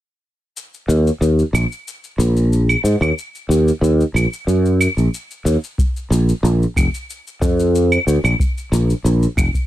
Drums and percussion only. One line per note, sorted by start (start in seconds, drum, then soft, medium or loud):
0.57 shaker soft
0.74 shaker soft
0.90 shaker medium
1.07 shaker soft
1.22 shaker soft
1.39 shaker soft
1.55 claves medium
1.55 shaker medium
1.72 shaker soft
1.88 shaker soft
2.04 shaker soft
2.20 shaker medium
2.37 shaker soft
2.52 shaker soft
2.69 claves medium
2.69 shaker soft
2.85 shaker medium
3.02 claves medium
3.02 shaker soft
3.18 shaker soft
3.35 shaker soft
3.51 shaker medium
3.68 shaker soft
3.84 shaker soft
4.01 shaker soft
4.16 claves medium
4.16 shaker medium
4.33 shaker soft
4.49 shaker soft
4.65 shaker soft
4.81 claves medium
4.81 shaker medium
4.98 shaker soft
5.14 shaker soft
5.31 shaker soft
5.46 shaker medium
5.64 shaker soft
5.78 kick loud
5.78 shaker soft
5.97 shaker soft
6.12 shaker medium
6.29 shaker soft
6.45 shaker soft
6.62 shaker soft
6.76 kick medium
6.76 claves medium
6.76 shaker medium
6.94 shaker soft
7.10 shaker soft
7.27 shaker soft
7.42 kick loud
7.42 shaker medium
7.60 shaker soft
7.75 shaker soft
7.92 claves medium
7.92 shaker soft
8.08 shaker medium
8.25 claves medium
8.25 shaker soft
8.39 kick loud
8.39 shaker soft
8.58 shaker soft
8.73 shaker medium
8.90 shaker soft
9.06 shaker soft
9.22 shaker soft
9.37 kick medium
9.37 claves medium
9.37 shaker medium
9.54 kick medium
9.54 shaker soft